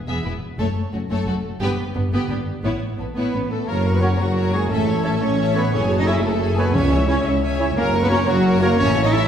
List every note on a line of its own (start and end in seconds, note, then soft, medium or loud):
0.07 0.15 E1 medium
0.07 0.15 E2 soft
0.07 0.24 B3 soft
0.07 0.24 G#4 soft
0.07 0.23 E5 soft
0.25 0.32 E1 soft
0.25 0.32 E2 soft
0.25 0.32 B3 soft
0.25 0.32 E4 soft
0.25 0.32 B4 soft
0.59 0.66 F#1 medium
0.59 0.66 F#2 medium
0.59 0.75 A3 medium
0.59 0.75 A4 medium
0.59 0.75 C#5 medium
0.93 1.01 F#1 soft
0.93 1.00 F#2 soft
0.93 1.00 A3 soft
0.93 1.00 C#4 soft
0.93 1.00 F#4 soft
1.10 1.17 F#1 medium
1.10 1.17 F#2 medium
1.10 1.26 A3 medium
1.10 1.26 A4 medium
1.10 1.26 C#5 medium
1.27 1.33 F#1 soft
1.27 1.34 F#2 soft
1.27 1.34 A3 soft
1.27 1.33 F#4 soft
1.27 1.34 A4 soft
1.61 1.68 G1 medium
1.61 1.68 G2 medium
1.61 1.77 B3 medium
1.61 1.77 G4 medium
1.61 1.77 B4 medium
1.95 2.02 G1 soft
1.95 2.02 G2 soft
1.95 2.02 B3 soft
1.95 2.03 B3 soft
1.95 2.02 D4 soft
2.12 2.19 G1 medium
2.12 2.19 G2 medium
2.12 2.29 B3 medium
2.12 2.29 G4 medium
2.12 2.29 B4 medium
2.29 2.36 G1 soft
2.29 2.37 G2 soft
2.29 2.37 B3 soft
2.29 2.37 D4 soft
2.29 2.36 G4 soft
2.64 2.71 A1 medium
2.64 2.71 A2 soft
2.64 2.80 B3 soft
2.64 2.80 E4 soft
2.64 2.80 C#5 soft
2.98 3.06 A1 soft
2.98 3.06 A2 soft
2.98 3.06 B3 soft
2.98 3.07 B3 soft
2.98 3.05 A4 soft
3.16 3.24 A1 soft
3.16 3.23 A2 soft
3.16 3.48 B3 medium
3.16 3.49 B3 medium
3.16 3.32 B3 soft
3.16 3.33 E4 soft
3.16 3.33 B4 soft
3.16 3.49 B4 medium
3.16 3.32 C#5 soft
3.34 3.41 A1 soft
3.34 3.41 A2 soft
3.34 3.41 B3 soft
3.34 3.41 C#4 soft
3.34 3.41 B4 soft
3.50 3.68 A3 medium
3.50 3.68 A4 medium
3.50 3.59 A4 soft
3.68 4.14 F#1 medium
3.68 4.14 F#2 medium
3.68 3.93 A#3 medium
3.68 3.94 A#3 medium
3.68 3.84 A#4 medium
3.68 3.76 A#4 medium
3.68 3.96 A#4 medium
3.68 3.84 A#4 medium
3.68 3.84 C#5 medium
3.68 3.84 A#5 medium
3.85 4.03 F#4 soft
3.85 4.02 A#4 soft
3.85 4.03 C#5 soft
3.85 4.03 C#6 soft
3.94 4.03 B3 medium
3.94 3.97 B4 medium
3.94 4.02 B4 medium
4.01 4.19 C#4 medium
4.01 4.08 C#4 medium
4.01 4.08 F#4 medium
4.01 4.20 A#4 soft
4.01 4.18 A#4 medium
4.01 4.08 C#5 medium
4.01 4.20 C#5 soft
4.01 4.19 C#5 medium
4.01 4.10 F#5 medium
4.01 4.19 A#5 soft
4.18 4.65 F#1 medium
4.18 4.65 F#2 medium
4.18 4.53 F#3 medium
4.18 4.53 F#4 medium
4.18 4.37 F#4 medium
4.18 4.53 F#4 medium
4.18 4.34 A#4 soft
4.18 4.37 C#5 soft
4.18 4.37 C#6 soft
4.36 4.52 A#4 medium
4.36 4.53 A#4 soft
4.36 4.52 C#5 medium
4.36 4.52 A#5 medium
4.53 4.70 G#3 medium
4.53 4.59 F#4 medium
4.53 4.71 F#4 soft
4.53 4.71 G#4 medium
4.53 4.72 G#4 medium
4.53 4.71 A#4 soft
4.53 4.60 C#5 medium
4.53 4.71 C#5 soft
4.53 4.62 F#5 medium
4.53 4.71 C#6 soft
4.70 5.16 A1 medium
4.70 5.02 A3 medium
4.70 5.04 A3 medium
4.70 4.86 C#4 medium
4.70 5.03 A4 medium
4.70 4.87 A4 medium
4.70 5.04 A4 medium
4.70 4.86 E5 medium
4.70 4.86 A5 medium
4.87 5.05 E4 soft
4.87 5.05 C#5 medium
4.87 5.05 C#6 medium
5.03 5.21 A3 medium
5.03 5.22 A3 medium
5.03 5.22 C#4 medium
5.03 5.11 A4 medium
5.03 5.22 A4 medium
5.03 5.21 A4 medium
5.03 5.22 A4 medium
5.03 5.11 C#5 medium
5.03 5.12 E5 medium
5.03 5.22 E5 soft
5.03 5.22 A5 soft
5.21 5.67 A1 medium
5.21 5.56 C#4 medium
5.21 5.39 E4 medium
5.21 5.55 C#5 medium
5.21 5.39 C#5 soft
5.21 5.39 C#5 medium
5.21 5.39 C#6 soft
5.39 5.55 C#4 medium
5.39 5.55 A4 medium
5.39 5.55 E5 medium
5.39 5.55 A5 medium
5.55 5.72 B3 medium
5.55 5.74 B3 medium
5.55 5.73 E4 soft
5.55 5.62 A4 medium
5.55 5.73 B4 medium
5.55 5.72 B4 medium
5.55 5.62 C#5 medium
5.55 5.73 C#5 soft
5.55 5.74 C#5 soft
5.55 5.64 E5 medium
5.55 5.73 C#6 soft
5.72 6.18 F#1 medium
5.72 5.80 C#4 medium
5.72 5.99 C#4 medium
5.72 5.89 G#4 medium
5.72 5.90 G#4 medium
5.72 5.89 A4 medium
5.72 5.98 C#5 medium
5.72 5.90 G#5 medium
5.90 6.07 F#4 medium
5.90 6.05 G#4 medium
5.90 6.08 C#5 medium
5.90 6.08 A5 medium
5.98 6.07 D#4 medium
5.98 6.08 D#4 medium
5.98 6.07 D#5 medium
6.06 6.24 E4 medium
6.06 6.15 E4 medium
6.06 6.22 G#4 medium
6.06 6.25 G#4 medium
6.06 6.12 A4 medium
6.06 6.24 A4 medium
6.06 6.13 C#5 medium
6.06 6.14 E5 medium
6.06 6.24 E5 medium
6.06 6.15 G#5 medium
6.06 6.25 G#5 medium
6.23 6.69 F#1 medium
6.23 6.70 F#1 medium
6.23 6.58 A3 medium
6.23 6.41 F#4 medium
6.23 6.39 G#4 medium
6.23 6.57 A4 medium
6.23 6.41 C#5 medium
6.23 6.42 A5 medium
6.41 6.57 G#4 medium
6.41 6.57 A4 medium
6.41 6.57 G#5 medium
6.57 6.75 B3 medium
6.57 6.75 F#4 medium
6.57 6.75 G#4 medium
6.57 6.63 A4 medium
6.57 6.74 B4 medium
6.57 6.77 B4 medium
6.57 6.75 C#5 medium
6.57 6.65 C#5 medium
6.57 6.65 G#5 medium
6.57 6.75 A5 medium
6.74 7.20 C#2 medium
6.74 7.22 C#3 medium
6.74 7.08 C#4 medium
6.74 7.07 C#4 medium
6.74 6.91 C#4 medium
6.74 7.08 C#5 medium
6.74 6.91 C#5 medium
6.74 7.09 C#5 medium
6.74 6.90 E5 medium
6.74 6.90 G#5 medium
6.91 7.09 E4 medium
6.91 7.09 C#5 medium
6.91 7.09 E5 medium
6.91 7.08 E5 medium
7.08 7.25 C#4 medium
7.08 7.26 C#4 medium
7.08 7.14 E4 medium
7.08 7.26 C#5 medium
7.08 7.15 C#5 medium
7.08 7.26 C#5 medium
7.08 7.25 E5 medium
7.08 7.17 G#5 medium
7.08 7.26 G#5 medium
7.25 7.71 C#2 medium
7.25 7.43 E4 medium
7.25 7.43 C#5 medium
7.25 7.43 E5 medium
7.25 7.42 E5 medium
7.43 7.59 C#4 medium
7.43 7.59 C#5 medium
7.43 7.59 E5 medium
7.43 7.59 G#5 medium
7.60 7.66 E4 medium
7.60 7.77 E4 medium
7.60 7.77 C#5 medium
7.60 7.66 C#5 medium
7.60 7.77 E5 medium
7.60 7.68 G#5 medium
7.76 8.22 F#1 medium
7.76 7.88 A#3 medium
7.76 7.85 A#3 loud
7.76 8.00 A#4 medium
7.76 7.93 A#4 medium
7.76 8.04 A#4 medium
7.76 7.94 A#4 medium
7.76 7.93 C#5 medium
7.76 7.94 A#5 medium
7.94 8.11 F#4 medium
7.94 8.10 A#4 medium
7.94 8.12 C#5 medium
7.94 8.12 C#6 medium
8.03 8.11 B3 medium
8.03 8.11 B3 loud
8.03 8.11 B4 medium
8.10 8.27 C#4 loud
8.10 8.28 C#4 loud
8.10 8.16 F#4 medium
8.10 8.28 A#4 medium
8.10 8.16 C#5 medium
8.10 8.18 C#5 medium
8.10 8.28 C#5 medium
8.10 8.29 C#5 medium
8.10 8.18 A#5 medium
8.10 8.29 A#5 medium
8.14 8.29 A#4 medium
8.27 8.73 F#1 medium
8.27 8.61 F#3 medium
8.27 8.62 F#3 loud
8.27 8.61 F#4 medium
8.27 8.62 F#4 medium
8.27 8.45 F#4 medium
8.27 8.45 A#4 medium
8.27 8.46 C#5 medium
8.27 8.46 C#6 medium
8.46 8.61 A#4 medium
8.46 8.62 A#4 medium
8.46 8.61 C#5 medium
8.46 8.62 A#5 medium
8.61 8.79 A#3 medium
8.61 8.79 A#3 loud
8.61 8.68 F#4 medium
8.61 8.79 F#4 medium
8.61 8.79 A#4 loud
8.61 8.79 A#4 medium
8.61 8.70 A#4 loud
8.61 8.68 C#5 medium
8.61 8.80 C#5 medium
8.61 8.71 A#5 medium
8.61 8.80 C#6 medium
8.78 9.24 A1 medium
8.78 9.05 C#4 loud
8.78 9.04 C#4 loud
8.78 8.95 C#4 medium
8.78 8.95 A4 medium
8.78 9.04 C#5 loud
8.78 8.96 E5 medium
8.78 8.96 A5 medium
8.97 9.14 E4 medium
8.97 9.14 C#5 medium
8.97 9.14 C#6 medium
9.03 9.13 D#4 medium
9.03 9.13 D#4 loud
9.03 9.12 D#5 medium
9.03 9.14 D#5 medium
9.12 9.28 C#4 medium
9.12 9.19 E4 medium
9.12 9.28 E4 loud
9.12 9.21 E4 loud
9.12 9.19 A4 medium
9.12 9.28 A4 medium
9.12 9.28 E5 loud
9.12 9.28 E5 medium
9.12 9.28 A5 medium
9.12 9.22 A5 medium